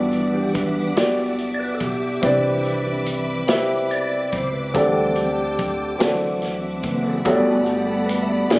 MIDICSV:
0, 0, Header, 1, 6, 480
1, 0, Start_track
1, 0, Key_signature, 1, "major"
1, 0, Tempo, 837989
1, 1278, Time_signature, 6, 3, 24, 8
1, 4921, End_track
2, 0, Start_track
2, 0, Title_t, "String section"
2, 0, Program_c, 0, 48
2, 0, Note_on_c, 0, 74, 64
2, 0, Note_on_c, 0, 76, 71
2, 0, Note_on_c, 0, 78, 63
2, 0, Note_on_c, 0, 86, 81
2, 1254, Note_off_c, 0, 74, 0
2, 1261, Note_off_c, 0, 78, 0
2, 1276, Note_on_c, 0, 83, 65
2, 2692, Note_off_c, 0, 76, 0
2, 2703, Note_off_c, 0, 83, 0
2, 2721, Note_on_c, 0, 79, 62
2, 2723, Note_on_c, 0, 81, 59
2, 3432, Note_off_c, 0, 79, 0
2, 3433, Note_off_c, 0, 81, 0
2, 3443, Note_on_c, 0, 78, 57
2, 3445, Note_on_c, 0, 76, 63
2, 4133, Note_off_c, 0, 86, 0
2, 4152, Note_off_c, 0, 78, 0
2, 4153, Note_off_c, 0, 76, 0
2, 4165, Note_on_c, 0, 81, 67
2, 4165, Note_on_c, 0, 83, 78
2, 4168, Note_on_c, 0, 74, 60
2, 4171, Note_on_c, 0, 78, 70
2, 4869, Note_off_c, 0, 74, 0
2, 4872, Note_off_c, 0, 81, 0
2, 4875, Note_off_c, 0, 78, 0
2, 4875, Note_on_c, 0, 74, 68
2, 4880, Note_on_c, 0, 76, 65
2, 4882, Note_on_c, 0, 80, 61
2, 4921, Note_off_c, 0, 74, 0
2, 4921, Note_off_c, 0, 76, 0
2, 4921, Note_off_c, 0, 80, 0
2, 4921, Note_off_c, 0, 83, 0
2, 4921, End_track
3, 0, Start_track
3, 0, Title_t, "Tonewheel organ"
3, 0, Program_c, 1, 16
3, 0, Note_on_c, 1, 52, 48
3, 0, Note_on_c, 1, 55, 46
3, 0, Note_on_c, 1, 62, 54
3, 0, Note_on_c, 1, 71, 90
3, 192, Note_on_c, 1, 67, 78
3, 210, Note_off_c, 1, 71, 0
3, 306, Note_off_c, 1, 67, 0
3, 309, Note_on_c, 1, 71, 91
3, 537, Note_off_c, 1, 52, 0
3, 538, Note_off_c, 1, 55, 0
3, 539, Note_off_c, 1, 62, 0
3, 555, Note_on_c, 1, 74, 82
3, 560, Note_off_c, 1, 71, 0
3, 863, Note_off_c, 1, 74, 0
3, 885, Note_on_c, 1, 74, 70
3, 913, Note_on_c, 1, 71, 84
3, 916, Note_off_c, 1, 74, 0
3, 998, Note_off_c, 1, 71, 0
3, 1000, Note_on_c, 1, 69, 62
3, 1038, Note_on_c, 1, 67, 84
3, 1039, Note_off_c, 1, 69, 0
3, 1277, Note_on_c, 1, 52, 49
3, 1283, Note_on_c, 1, 71, 45
3, 1287, Note_on_c, 1, 62, 58
3, 1616, Note_off_c, 1, 67, 0
3, 1648, Note_off_c, 1, 62, 0
3, 1655, Note_on_c, 1, 62, 56
3, 1759, Note_off_c, 1, 62, 0
3, 1975, Note_off_c, 1, 52, 0
3, 1978, Note_off_c, 1, 71, 0
3, 2240, Note_on_c, 1, 74, 96
3, 2482, Note_on_c, 1, 72, 80
3, 2486, Note_off_c, 1, 74, 0
3, 2597, Note_on_c, 1, 71, 73
3, 2604, Note_off_c, 1, 72, 0
3, 2709, Note_off_c, 1, 71, 0
3, 2711, Note_on_c, 1, 52, 53
3, 2714, Note_on_c, 1, 55, 49
3, 2715, Note_on_c, 1, 69, 75
3, 2720, Note_on_c, 1, 60, 55
3, 2940, Note_off_c, 1, 69, 0
3, 2960, Note_on_c, 1, 67, 68
3, 3033, Note_off_c, 1, 52, 0
3, 3035, Note_off_c, 1, 55, 0
3, 3038, Note_off_c, 1, 60, 0
3, 3416, Note_off_c, 1, 67, 0
3, 3441, Note_on_c, 1, 52, 46
3, 3447, Note_on_c, 1, 54, 37
3, 3448, Note_on_c, 1, 60, 51
3, 3925, Note_on_c, 1, 71, 73
3, 4033, Note_off_c, 1, 71, 0
3, 4037, Note_on_c, 1, 69, 74
3, 4091, Note_off_c, 1, 69, 0
3, 4135, Note_off_c, 1, 52, 0
3, 4138, Note_off_c, 1, 54, 0
3, 4139, Note_off_c, 1, 60, 0
3, 4156, Note_on_c, 1, 55, 52
3, 4159, Note_on_c, 1, 69, 89
3, 4163, Note_on_c, 1, 57, 43
3, 4169, Note_on_c, 1, 59, 55
3, 4279, Note_on_c, 1, 66, 69
3, 4281, Note_off_c, 1, 69, 0
3, 4385, Note_on_c, 1, 67, 76
3, 4401, Note_off_c, 1, 66, 0
3, 4501, Note_off_c, 1, 67, 0
3, 4502, Note_on_c, 1, 69, 70
3, 4616, Note_on_c, 1, 71, 90
3, 4620, Note_off_c, 1, 69, 0
3, 4708, Note_off_c, 1, 71, 0
3, 4710, Note_on_c, 1, 76, 64
3, 4743, Note_on_c, 1, 74, 82
3, 4753, Note_off_c, 1, 76, 0
3, 4852, Note_off_c, 1, 55, 0
3, 4856, Note_off_c, 1, 57, 0
3, 4858, Note_off_c, 1, 59, 0
3, 4866, Note_on_c, 1, 54, 42
3, 4868, Note_on_c, 1, 56, 44
3, 4873, Note_on_c, 1, 62, 50
3, 4921, Note_off_c, 1, 54, 0
3, 4921, Note_off_c, 1, 56, 0
3, 4921, Note_off_c, 1, 62, 0
3, 4921, Note_off_c, 1, 74, 0
3, 4921, End_track
4, 0, Start_track
4, 0, Title_t, "Upright piano"
4, 0, Program_c, 2, 0
4, 0, Control_c, 2, 64, 127
4, 0, Note_on_c, 2, 43, 59
4, 0, Note_on_c, 2, 59, 72
4, 0, Note_on_c, 2, 64, 64
4, 0, Note_on_c, 2, 66, 60
4, 0, Note_on_c, 2, 67, 59
4, 0, Note_on_c, 2, 74, 79
4, 505, Note_off_c, 2, 59, 0
4, 507, Note_off_c, 2, 64, 0
4, 509, Note_off_c, 2, 66, 0
4, 510, Note_off_c, 2, 67, 0
4, 512, Note_off_c, 2, 74, 0
4, 531, Note_off_c, 2, 43, 0
4, 549, Note_on_c, 2, 59, 61
4, 550, Note_on_c, 2, 64, 55
4, 554, Note_on_c, 2, 66, 53
4, 556, Note_on_c, 2, 67, 55
4, 559, Note_on_c, 2, 74, 68
4, 1228, Note_off_c, 2, 59, 0
4, 1229, Note_off_c, 2, 64, 0
4, 1230, Note_off_c, 2, 66, 0
4, 1232, Note_off_c, 2, 67, 0
4, 1233, Note_off_c, 2, 74, 0
4, 1269, Note_on_c, 2, 60, 72
4, 1274, Note_on_c, 2, 64, 65
4, 1277, Note_on_c, 2, 48, 58
4, 1277, Note_on_c, 2, 67, 61
4, 1278, Note_on_c, 2, 71, 70
4, 1284, Control_c, 2, 64, 0
4, 1287, Note_on_c, 2, 74, 79
4, 1393, Control_c, 2, 64, 127
4, 1948, Note_off_c, 2, 60, 0
4, 1951, Note_off_c, 2, 64, 0
4, 1952, Note_off_c, 2, 67, 0
4, 1953, Note_off_c, 2, 71, 0
4, 1957, Note_off_c, 2, 74, 0
4, 1975, Note_off_c, 2, 48, 0
4, 1990, Note_on_c, 2, 60, 68
4, 1997, Note_on_c, 2, 64, 67
4, 1999, Note_on_c, 2, 67, 69
4, 2003, Note_on_c, 2, 71, 66
4, 2007, Note_on_c, 2, 76, 84
4, 2668, Note_off_c, 2, 60, 0
4, 2672, Note_off_c, 2, 64, 0
4, 2673, Note_off_c, 2, 67, 0
4, 2675, Note_off_c, 2, 71, 0
4, 2677, Note_off_c, 2, 76, 0
4, 2712, Note_on_c, 2, 60, 73
4, 2717, Note_on_c, 2, 50, 57
4, 2720, Note_on_c, 2, 62, 72
4, 2721, Note_on_c, 2, 67, 65
4, 2724, Note_on_c, 2, 69, 71
4, 2725, Control_c, 2, 64, 0
4, 2727, Note_on_c, 2, 74, 77
4, 2829, Control_c, 2, 64, 127
4, 3389, Note_off_c, 2, 60, 0
4, 3393, Note_off_c, 2, 62, 0
4, 3393, Note_off_c, 2, 67, 0
4, 3395, Note_off_c, 2, 69, 0
4, 3396, Note_off_c, 2, 74, 0
4, 3415, Note_off_c, 2, 50, 0
4, 3428, Note_on_c, 2, 60, 63
4, 3436, Note_on_c, 2, 64, 56
4, 3437, Note_on_c, 2, 50, 62
4, 3438, Note_on_c, 2, 66, 56
4, 3438, Note_on_c, 2, 69, 59
4, 3442, Note_on_c, 2, 74, 65
4, 3445, Control_c, 2, 64, 0
4, 3554, Control_c, 2, 64, 127
4, 4106, Note_off_c, 2, 60, 0
4, 4110, Note_off_c, 2, 64, 0
4, 4111, Note_off_c, 2, 66, 0
4, 4111, Note_off_c, 2, 69, 0
4, 4113, Note_off_c, 2, 74, 0
4, 4133, Note_off_c, 2, 50, 0
4, 4153, Note_on_c, 2, 59, 75
4, 4153, Note_on_c, 2, 66, 70
4, 4158, Note_on_c, 2, 67, 66
4, 4161, Note_on_c, 2, 43, 61
4, 4162, Note_on_c, 2, 69, 59
4, 4165, Control_c, 2, 64, 0
4, 4165, Note_on_c, 2, 73, 61
4, 4198, Note_off_c, 2, 73, 0
4, 4205, Note_on_c, 2, 74, 76
4, 4280, Control_c, 2, 64, 127
4, 4828, Note_off_c, 2, 59, 0
4, 4828, Note_off_c, 2, 66, 0
4, 4830, Note_off_c, 2, 67, 0
4, 4832, Note_off_c, 2, 69, 0
4, 4854, Note_off_c, 2, 43, 0
4, 4854, Note_off_c, 2, 74, 0
4, 4862, Note_on_c, 2, 59, 58
4, 4868, Note_on_c, 2, 62, 53
4, 4873, Note_on_c, 2, 52, 59
4, 4874, Note_on_c, 2, 68, 60
4, 4875, Note_on_c, 2, 64, 58
4, 4876, Note_on_c, 2, 74, 63
4, 4883, Control_c, 2, 64, 0
4, 4921, Note_off_c, 2, 52, 0
4, 4921, Note_off_c, 2, 59, 0
4, 4921, Note_off_c, 2, 62, 0
4, 4921, Note_off_c, 2, 64, 0
4, 4921, Note_off_c, 2, 68, 0
4, 4921, Note_off_c, 2, 74, 0
4, 4921, End_track
5, 0, Start_track
5, 0, Title_t, "Upright bass"
5, 0, Program_c, 3, 32
5, 0, Note_on_c, 3, 31, 86
5, 1014, Note_off_c, 3, 31, 0
5, 1033, Note_on_c, 3, 35, 80
5, 1256, Note_off_c, 3, 35, 0
5, 1276, Note_on_c, 3, 36, 86
5, 2455, Note_off_c, 3, 36, 0
5, 2478, Note_on_c, 3, 37, 77
5, 2699, Note_off_c, 3, 37, 0
5, 2721, Note_on_c, 3, 38, 104
5, 3417, Note_off_c, 3, 38, 0
5, 3439, Note_on_c, 3, 38, 83
5, 3895, Note_off_c, 3, 38, 0
5, 3918, Note_on_c, 3, 30, 86
5, 4138, Note_off_c, 3, 30, 0
5, 4156, Note_on_c, 3, 31, 95
5, 4852, Note_off_c, 3, 31, 0
5, 4876, Note_on_c, 3, 28, 97
5, 4921, Note_off_c, 3, 28, 0
5, 4921, End_track
6, 0, Start_track
6, 0, Title_t, "Drums"
6, 68, Note_on_c, 9, 42, 43
6, 125, Note_off_c, 9, 42, 0
6, 313, Note_on_c, 9, 42, 74
6, 316, Note_on_c, 9, 36, 82
6, 371, Note_off_c, 9, 42, 0
6, 373, Note_off_c, 9, 36, 0
6, 554, Note_on_c, 9, 42, 80
6, 558, Note_on_c, 9, 38, 109
6, 611, Note_off_c, 9, 42, 0
6, 616, Note_off_c, 9, 38, 0
6, 793, Note_on_c, 9, 42, 52
6, 850, Note_off_c, 9, 42, 0
6, 1032, Note_on_c, 9, 42, 70
6, 1035, Note_on_c, 9, 36, 77
6, 1089, Note_off_c, 9, 42, 0
6, 1092, Note_off_c, 9, 36, 0
6, 1276, Note_on_c, 9, 42, 62
6, 1277, Note_on_c, 9, 36, 82
6, 1334, Note_off_c, 9, 36, 0
6, 1334, Note_off_c, 9, 42, 0
6, 1515, Note_on_c, 9, 42, 43
6, 1572, Note_off_c, 9, 42, 0
6, 1755, Note_on_c, 9, 42, 71
6, 1812, Note_off_c, 9, 42, 0
6, 1993, Note_on_c, 9, 42, 78
6, 1998, Note_on_c, 9, 38, 102
6, 2050, Note_off_c, 9, 42, 0
6, 2055, Note_off_c, 9, 38, 0
6, 2240, Note_on_c, 9, 42, 52
6, 2297, Note_off_c, 9, 42, 0
6, 2476, Note_on_c, 9, 42, 65
6, 2479, Note_on_c, 9, 36, 87
6, 2533, Note_off_c, 9, 42, 0
6, 2536, Note_off_c, 9, 36, 0
6, 2719, Note_on_c, 9, 36, 83
6, 2719, Note_on_c, 9, 42, 72
6, 2776, Note_off_c, 9, 36, 0
6, 2777, Note_off_c, 9, 42, 0
6, 2954, Note_on_c, 9, 42, 46
6, 3011, Note_off_c, 9, 42, 0
6, 3200, Note_on_c, 9, 42, 65
6, 3202, Note_on_c, 9, 36, 84
6, 3257, Note_off_c, 9, 42, 0
6, 3259, Note_off_c, 9, 36, 0
6, 3438, Note_on_c, 9, 42, 87
6, 3443, Note_on_c, 9, 38, 106
6, 3495, Note_off_c, 9, 42, 0
6, 3500, Note_off_c, 9, 38, 0
6, 3676, Note_on_c, 9, 42, 53
6, 3684, Note_on_c, 9, 38, 32
6, 3733, Note_off_c, 9, 42, 0
6, 3741, Note_off_c, 9, 38, 0
6, 3913, Note_on_c, 9, 42, 75
6, 3917, Note_on_c, 9, 36, 82
6, 3970, Note_off_c, 9, 42, 0
6, 3974, Note_off_c, 9, 36, 0
6, 4152, Note_on_c, 9, 42, 62
6, 4157, Note_on_c, 9, 36, 79
6, 4210, Note_off_c, 9, 42, 0
6, 4214, Note_off_c, 9, 36, 0
6, 4388, Note_on_c, 9, 42, 39
6, 4445, Note_off_c, 9, 42, 0
6, 4635, Note_on_c, 9, 42, 76
6, 4692, Note_off_c, 9, 42, 0
6, 4870, Note_on_c, 9, 42, 83
6, 4874, Note_on_c, 9, 38, 112
6, 4921, Note_off_c, 9, 38, 0
6, 4921, Note_off_c, 9, 42, 0
6, 4921, End_track
0, 0, End_of_file